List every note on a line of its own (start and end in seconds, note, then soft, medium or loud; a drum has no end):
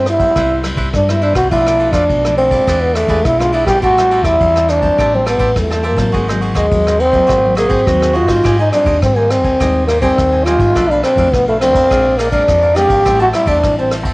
0.00 0.27 G2 medium
0.00 0.34 G2 medium
0.00 0.18 G3 medium
0.00 0.18 B3 medium
0.00 0.18 E4 medium
0.00 0.20 B4 soft
0.00 0.19 C5 soft
0.00 0.18 E5 soft
0.06 0.62 E4 loud
0.06 cross-stick medium
0.06 ride soft
0.20 0.31 G3 medium
0.20 0.32 B3 medium
0.20 0.32 E4 medium
0.20 0.35 B4 soft
0.20 0.35 C5 soft
0.20 0.34 E5 soft
0.20 kick medium
0.20 ride soft
0.36 0.73 C2 medium
0.36 0.92 C3 medium
0.36 0.61 G3 medium
0.36 0.61 B3 medium
0.36 0.62 E4 medium
0.36 0.62 B4 medium
0.36 0.63 C5 medium
0.36 0.63 E5 medium
0.36 kick medium
0.36 cross-stick medium
0.36 ride soft
0.63 1.04 G3 medium
0.63 1.04 B3 soft
0.63 0.76 E4 soft
0.63 1.04 E4 medium
0.63 0.76 B4 soft
0.63 0.76 C5 soft
0.63 0.77 E5 medium
0.63 cross-stick medium
0.63 ride medium
0.75 0.90 C2 medium
0.75 0.87 E4 medium
0.75 0.88 B4 medium
0.75 0.88 C5 medium
0.75 0.88 E5 medium
0.75 kick medium
0.75 ride soft
0.94 1.35 G2 medium
0.94 1.49 G2 medium
0.94 1.12 D4 medium
0.94 kick medium
0.94 cross-stick medium
0.94 ride soft
1.09 1.50 G3 medium
1.09 1.50 B3 medium
1.09 1.50 E4 medium
1.09 1.24 E4 medium
1.09 1.21 B4 soft
1.09 1.21 C5 soft
1.09 1.22 E5 soft
1.09 cross-stick medium
1.22 1.35 D4 medium
1.22 1.36 E4 medium
1.22 1.36 B4 medium
1.22 1.35 C5 medium
1.22 1.34 E5 medium
1.22 ride soft
1.34 1.52 C2 medium
1.34 1.50 F#4 medium
1.34 1.50 B4 soft
1.34 1.50 C5 soft
1.34 1.49 E5 soft
1.34 kick medium
1.34 cross-stick medium
1.34 ride soft
1.51 1.89 B1 loud
1.51 2.06 B2 medium
1.51 1.90 F3 medium
1.51 1.91 A3 medium
1.51 1.91 D4 medium
1.51 1.94 E4 medium
1.51 1.65 F4 medium
1.51 1.65 A4 medium
1.51 1.65 B4 medium
1.51 1.65 D5 medium
1.51 kick medium
1.51 ride soft
1.66 1.78 A4 medium
1.66 1.79 B4 medium
1.66 1.80 D5 medium
1.66 cross-stick medium
1.79 1.91 F4 soft
1.79 1.92 A4 medium
1.79 1.92 B4 medium
1.79 1.93 D5 medium
1.79 ride soft
1.91 2.05 F2 medium
1.91 2.18 F3 medium
1.91 2.19 A3 medium
1.91 2.36 D4 medium
1.91 2.19 D4 medium
1.91 2.03 F4 medium
1.91 2.03 A4 medium
1.91 2.03 B4 medium
1.91 2.04 D5 medium
1.91 kick medium
1.91 cross-stick medium
1.91 ride soft
2.09 2.59 B1 medium
2.09 2.64 B2 medium
2.09 kick medium
2.09 ride soft
2.25 2.49 F3 medium
2.25 2.49 A3 medium
2.25 2.49 D4 medium
2.25 2.51 A4 soft
2.25 2.51 B4 soft
2.25 2.50 D5 soft
2.25 cross-stick medium
2.37 2.84 C4 medium
2.37 ride soft
2.51 3.06 G#3 medium
2.51 3.06 D4 medium
2.51 3.06 F4 medium
2.51 2.66 A4 soft
2.51 2.66 B4 soft
2.51 2.65 D5 medium
2.51 kick medium
2.51 ride medium
2.67 3.04 E2 medium
2.67 3.23 E3 medium
2.67 2.94 E4 medium
2.67 2.94 G#4 medium
2.67 2.95 B4 medium
2.67 2.95 D5 medium
2.67 kick medium
2.67 cross-stick medium
2.67 ride medium
2.82 2.96 B3 medium
2.95 3.26 A3 medium
2.95 3.07 E4 soft
2.95 3.08 G#4 soft
2.95 3.08 B4 soft
2.95 3.08 D5 medium
2.95 cross-stick medium
2.95 ride medium
3.07 3.21 E2 medium
3.07 3.34 G#3 medium
3.07 3.35 D4 medium
3.07 3.18 E4 medium
3.07 3.35 F4 medium
3.07 3.19 G#4 medium
3.07 3.19 B4 medium
3.07 3.19 D5 medium
3.07 kick medium
3.07 ride soft
3.25 3.65 B1 medium
3.25 3.80 B2 medium
3.25 3.42 E4 loud
3.25 kick medium
3.25 cross-stick medium
3.25 ride soft
3.40 3.64 G#3 medium
3.40 3.64 D4 medium
3.40 3.55 F4 medium
3.40 3.64 F4 medium
3.40 3.52 G#4 soft
3.40 3.53 B4 soft
3.40 3.53 D5 soft
3.40 cross-stick medium
3.53 3.67 E4 medium
3.53 3.66 E4 loud
3.53 3.67 G#4 medium
3.53 3.66 B4 medium
3.53 3.65 D5 medium
3.53 ride soft
3.65 3.83 A#1 medium
3.65 3.97 G3 medium
3.65 3.98 C4 medium
3.65 3.98 E4 medium
3.65 3.81 G4 loud
3.65 3.81 G#4 soft
3.65 3.81 B4 soft
3.65 3.81 D5 soft
3.65 kick medium
3.65 cross-stick medium
3.65 ride medium
3.82 4.20 A1 loud
3.82 4.38 A2 medium
3.82 4.26 F#4 loud
3.82 3.96 G4 medium
3.82 3.96 C5 medium
3.82 3.96 E5 medium
3.82 3.96 A5 medium
3.82 kick medium
3.82 ride soft
3.97 4.37 G3 medium
3.97 4.37 C4 medium
3.97 4.37 E4 medium
3.97 4.10 C5 medium
3.97 4.10 E5 medium
3.97 4.11 A5 medium
3.97 cross-stick medium
4.10 4.23 G4 soft
4.10 4.24 C5 medium
4.10 4.24 E5 medium
4.10 4.24 A5 medium
4.10 ride soft
4.22 4.36 E2 medium
4.22 4.71 E4 loud
4.22 4.34 G4 medium
4.22 4.35 C5 medium
4.22 4.35 E5 medium
4.22 4.35 A5 medium
4.22 kick medium
4.22 cross-stick medium
4.22 ride soft
4.41 4.90 E2 medium
4.41 4.96 E3 medium
4.41 4.80 G3 medium
4.41 4.80 C4 medium
4.41 4.80 E4 medium
4.41 kick medium
4.41 ride soft
4.56 4.82 C5 soft
4.56 4.82 E5 soft
4.56 4.81 A5 soft
4.56 cross-stick medium
4.69 5.16 D4 loud
4.69 cross-stick medium
4.69 ride soft
4.82 5.08 G3 medium
4.82 5.08 C4 medium
4.82 5.08 E4 medium
4.82 4.97 C5 soft
4.82 4.97 E5 soft
4.82 4.96 A5 soft
4.82 kick medium
4.82 ride soft
4.98 5.35 A1 medium
4.98 5.54 A2 medium
4.98 5.24 G4 medium
4.98 5.25 C5 medium
4.98 5.26 E5 medium
4.98 5.26 A5 medium
4.98 kick medium
4.98 cross-stick medium
4.98 ride soft
5.14 5.52 G3 medium
5.14 5.28 C4 medium
5.14 5.53 C4 medium
5.14 5.53 E4 medium
5.25 5.61 B3 medium
5.25 5.38 G4 soft
5.25 5.38 C5 soft
5.25 5.39 E5 medium
5.25 5.39 A5 medium
5.25 cross-stick medium
5.25 ride medium
5.38 5.52 A1 medium
5.38 5.50 G4 medium
5.38 5.50 C5 medium
5.38 5.50 E5 medium
5.38 5.50 A5 medium
5.38 kick medium
5.38 ride soft
5.56 5.96 E2 medium
5.56 6.11 E3 medium
5.56 5.84 G3 medium
5.56 5.72 A3 medium
5.56 5.84 C4 medium
5.56 5.84 E4 medium
5.56 kick medium
5.56 cross-stick medium
5.56 ride medium
5.71 5.86 A3 medium
5.71 5.83 C5 soft
5.71 5.83 E5 soft
5.71 5.83 A5 soft
5.71 cross-stick medium
5.83 6.28 A#3 medium
5.83 5.97 G4 medium
5.83 5.97 C5 medium
5.83 5.96 E5 medium
5.83 5.95 A5 medium
5.83 ride soft
5.96 6.15 A2 medium
5.96 6.23 F#3 medium
5.96 6.24 A#3 medium
5.96 6.24 C4 medium
5.96 6.12 C5 soft
5.96 6.12 E5 soft
5.96 6.11 A5 soft
5.96 kick medium
5.96 cross-stick medium
5.96 ride medium
6.12 6.51 G#1 loud
6.12 6.69 G#2 medium
6.12 6.26 F#4 medium
6.12 6.27 G#4 medium
6.12 6.27 C5 medium
6.12 6.27 D#5 medium
6.12 kick medium
6.12 ride soft
6.28 6.68 F#3 medium
6.28 6.68 A#3 medium
6.28 6.68 C4 medium
6.28 6.40 G#4 medium
6.28 6.41 C5 medium
6.28 6.41 D#5 medium
6.28 cross-stick medium
6.41 6.53 F#4 soft
6.41 6.54 G#4 medium
6.41 6.54 C5 medium
6.41 6.54 D#5 medium
6.41 ride soft
6.54 6.67 D#2 medium
6.54 7.02 G#3 medium
6.54 6.65 F#4 medium
6.54 6.65 G#4 medium
6.54 6.65 C5 medium
6.54 6.65 D#5 medium
6.54 kick medium
6.54 cross-stick medium
6.54 ride soft
6.71 7.21 D#2 medium
6.71 7.27 D#3 medium
6.71 6.99 F#3 medium
6.71 7.00 A#3 medium
6.71 7.00 C4 medium
6.71 kick medium
6.71 ride soft
6.85 7.12 G#4 soft
6.85 7.11 C5 soft
6.85 7.10 D#5 soft
6.85 cross-stick medium
6.99 7.57 C4 loud
6.99 ride medium
7.12 7.39 F#3 medium
7.12 7.39 A#3 medium
7.12 7.39 C4 medium
7.12 7.26 G#4 soft
7.12 7.27 C5 soft
7.12 7.27 D#5 soft
7.12 kick medium
7.12 ride medium
7.27 7.66 G#1 medium
7.27 7.54 F#4 medium
7.27 7.54 G#4 medium
7.27 7.55 C5 medium
7.27 7.56 D#5 medium
7.27 kick medium
7.27 cross-stick medium
7.27 ride soft
7.31 7.85 G#2 medium
7.45 7.83 F#3 medium
7.45 7.84 A#3 medium
7.45 7.84 C4 medium
7.55 7.72 A#3 medium
7.55 7.68 F#4 soft
7.55 7.68 G#4 soft
7.55 7.88 G#4 medium
7.55 7.68 C5 soft
7.55 7.69 D#5 medium
7.55 cross-stick medium
7.55 ride medium
7.69 7.83 G#1 medium
7.69 8.17 C4 medium
7.69 7.80 F#4 medium
7.69 7.80 G#4 medium
7.69 7.80 C5 medium
7.69 7.80 D#5 medium
7.69 kick medium
7.69 ride soft
7.86 8.27 D#2 medium
7.86 8.43 D#3 medium
7.86 8.27 F#3 medium
7.86 8.27 A#3 medium
7.86 8.27 C4 medium
7.86 8.44 F#4 medium
7.86 kick medium
7.86 cross-stick medium
7.86 ride medium
8.00 8.13 G#4 soft
8.00 8.13 C5 soft
8.00 8.14 D#5 soft
8.00 cross-stick medium
8.13 8.59 F4 medium
8.13 8.28 F#4 medium
8.13 8.27 G#4 medium
8.13 8.27 C5 medium
8.13 8.26 D#5 medium
8.13 ride soft
8.27 8.41 G#2 medium
8.27 8.54 G3 medium
8.27 8.54 C4 medium
8.27 8.55 D#4 medium
8.27 8.43 G#4 soft
8.27 8.42 C5 soft
8.27 8.42 D#5 soft
8.27 kick medium
8.27 cross-stick medium
8.27 ride medium
8.44 8.69 G#2 loud
8.44 9.00 G#2 medium
8.44 8.58 G4 medium
8.44 8.58 C5 medium
8.44 8.58 D#5 medium
8.44 8.58 G#5 medium
8.44 kick medium
8.44 cross-stick medium
8.44 ride medium
8.59 8.72 D#4 medium
8.59 8.71 C5 medium
8.59 8.72 D#5 medium
8.59 8.72 G#5 medium
8.72 8.98 G3 medium
8.72 8.98 C4 medium
8.72 9.00 D4 medium
8.72 8.99 D#4 medium
8.72 8.85 G4 soft
8.72 8.85 C5 medium
8.72 8.85 D#5 medium
8.72 8.85 G#5 medium
8.72 cross-stick medium
8.72 ride soft
8.84 9.03 D#2 medium
8.84 8.96 G4 medium
8.84 8.96 C5 medium
8.84 8.96 D#5 medium
8.84 8.96 G#5 medium
8.84 kick medium
8.84 ride soft
9.02 9.42 G#2 medium
9.02 9.58 D#3 medium
9.02 9.56 G3 medium
9.02 9.18 C4 medium
9.02 9.56 C4 medium
9.02 9.56 D#4 medium
9.02 kick medium
9.02 cross-stick medium
9.02 ride soft
9.16 9.32 A#3 medium
9.16 9.44 C5 soft
9.16 9.44 D#5 soft
9.16 9.43 G#5 medium
9.30 9.87 C4 medium
9.30 cross-stick medium
9.30 ride medium
9.42 9.56 D#2 medium
9.42 9.59 C5 soft
9.42 9.59 D#5 soft
9.42 9.58 G#5 soft
9.42 kick medium
9.42 ride soft
9.60 10.10 D#2 medium
9.60 10.16 G#2 medium
9.60 9.88 G3 medium
9.60 9.88 C4 medium
9.60 9.88 D#4 medium
9.60 9.87 G4 medium
9.60 9.87 C5 medium
9.60 9.87 D#5 medium
9.60 9.88 G#5 medium
9.60 kick medium
9.60 cross-stick medium
9.60 ride soft
9.87 10.01 A#3 medium
9.87 10.00 G4 soft
9.87 10.00 C5 soft
9.87 10.01 D#5 soft
9.87 10.01 G#5 medium
9.87 cross-stick medium
9.87 ride medium
10.01 10.42 G3 medium
10.01 10.46 C4 loud
10.01 10.42 C4 medium
10.01 10.42 D#4 medium
10.01 10.12 G4 medium
10.01 10.12 C5 medium
10.01 10.12 D#5 medium
10.01 10.12 G#5 medium
10.01 kick medium
10.01 ride soft
10.18 10.55 D#2 medium
10.18 10.73 D#3 medium
10.18 kick medium
10.18 cross-stick medium
10.18 ride soft
10.32 10.45 C5 soft
10.32 10.46 D#5 soft
10.32 10.46 G#5 soft
10.44 10.74 G3 medium
10.44 10.92 F4 medium
10.44 10.59 G4 medium
10.44 10.60 C5 medium
10.44 10.59 D#5 medium
10.44 10.58 G#5 medium
10.44 cross-stick medium
10.44 ride soft
10.48 10.74 C4 medium
10.48 10.74 D#4 medium
10.58 10.72 G#2 medium
10.58 10.74 C5 soft
10.58 10.74 D#5 soft
10.58 10.73 G#5 medium
10.58 kick medium
10.58 ride soft
10.75 11.00 B1 loud
10.75 11.31 B2 medium
10.75 11.03 F3 medium
10.75 11.04 A3 medium
10.75 10.89 D4 medium
10.75 11.04 D4 medium
10.75 10.89 A4 medium
10.75 10.89 B4 medium
10.75 10.90 F5 medium
10.75 kick medium
10.75 cross-stick medium
10.75 ride soft
10.90 11.03 D4 loud
10.90 11.04 A4 medium
10.90 11.04 B4 medium
10.90 11.04 F5 medium
11.03 11.35 C4 medium
11.03 11.17 D4 soft
11.03 11.17 A4 medium
11.03 11.17 B4 medium
11.03 11.17 F5 medium
11.03 cross-stick medium
11.03 ride soft
11.16 11.34 F2 medium
11.16 11.57 F3 medium
11.16 11.57 A3 medium
11.16 11.27 D4 medium
11.16 11.58 D4 medium
11.16 11.27 A4 medium
11.16 11.28 B4 medium
11.16 11.28 F5 medium
11.16 kick medium
11.16 ride soft
11.33 11.73 B1 medium
11.33 11.89 B2 medium
11.33 11.48 B3 medium
11.33 kick medium
11.33 cross-stick medium
11.33 ride soft
11.48 11.59 A3 medium
11.48 11.75 A4 soft
11.48 11.75 B4 soft
11.48 11.74 F5 soft
11.60 11.79 F3 medium
11.60 11.79 A3 medium
11.60 12.19 C4 loud
11.60 11.80 D4 medium
11.60 cross-stick medium
11.60 ride medium
11.73 11.87 F2 medium
11.73 11.90 A4 soft
11.73 11.90 B4 soft
11.73 11.89 F5 medium
11.73 kick medium
11.73 ride medium
11.91 12.40 A#1 loud
11.91 12.46 A#2 medium
11.91 12.19 G#3 medium
11.91 12.19 C4 medium
11.91 12.19 D4 medium
11.91 12.17 G#4 medium
11.91 12.18 A#4 medium
11.91 12.19 D5 medium
11.91 12.18 F5 medium
11.91 kick medium
11.91 cross-stick medium
11.91 ride medium
12.17 12.31 A#3 medium
12.17 12.31 G#4 soft
12.17 12.31 A#4 soft
12.17 12.32 D5 medium
12.17 12.32 F5 soft
12.17 cross-stick medium
12.17 ride medium
12.32 12.73 G#3 medium
12.32 12.73 C4 medium
12.32 12.77 D4 medium
12.32 12.73 D4 medium
12.32 12.42 G#4 medium
12.32 12.42 A#4 medium
12.32 12.43 D5 medium
12.32 12.43 F5 medium
12.32 kick medium
12.32 ride medium
12.48 12.85 F2 medium
12.48 13.04 F3 medium
12.48 kick medium
12.48 cross-stick medium
12.48 ride medium
12.62 12.75 A#4 soft
12.62 12.75 D5 soft
12.62 12.75 F5 soft
12.75 13.02 G#3 medium
12.75 13.02 C4 medium
12.75 13.02 D4 medium
12.75 13.20 G4 loud
12.75 12.89 G#4 medium
12.75 12.89 A#4 medium
12.75 12.87 D5 medium
12.75 12.89 F5 medium
12.75 cross-stick medium
12.75 ride medium
12.88 13.02 G#1 medium
12.88 13.04 A#4 soft
12.88 13.03 D5 medium
12.88 13.04 F5 soft
12.88 kick medium
12.88 ride medium
13.05 13.31 A1 loud
13.05 13.62 A2 medium
13.05 13.24 G3 medium
13.05 13.24 C4 medium
13.05 13.24 E4 medium
13.05 13.19 G4 medium
13.05 13.19 C5 medium
13.05 13.19 E5 medium
13.05 13.19 A5 medium
13.05 kick medium
13.05 cross-stick medium
13.05 ride soft
13.20 13.27 F#4 loud
13.20 13.33 C5 medium
13.20 13.33 E5 medium
13.20 13.34 A5 medium
13.33 13.59 G3 medium
13.33 13.60 C4 medium
13.33 13.49 E4 loud
13.33 13.60 E4 medium
13.33 13.45 G4 medium
13.33 13.46 C5 medium
13.33 13.46 E5 medium
13.33 13.46 A5 medium
13.33 cross-stick medium
13.33 ride medium
13.46 13.63 E2 medium
13.46 13.78 D4 loud
13.46 13.57 G4 medium
13.46 13.57 C5 medium
13.46 13.57 E5 medium
13.46 13.57 A5 medium
13.46 kick medium
13.46 ride medium
13.63 14.03 A1 medium
13.63 14.13 E3 medium
13.63 14.01 G3 medium
13.63 14.01 C4 medium
13.63 14.01 E4 medium
13.63 kick medium
13.63 cross-stick medium
13.63 ride soft
13.79 13.92 C4 medium
13.79 14.06 C5 soft
13.79 14.05 E5 soft
13.79 14.04 A5 medium
13.91 cross-stick medium
13.91 ride soft
14.03 14.13 E2 medium
14.03 14.13 C5 soft
14.03 14.13 E5 soft
14.03 14.13 A5 soft
14.03 kick medium
14.03 ride medium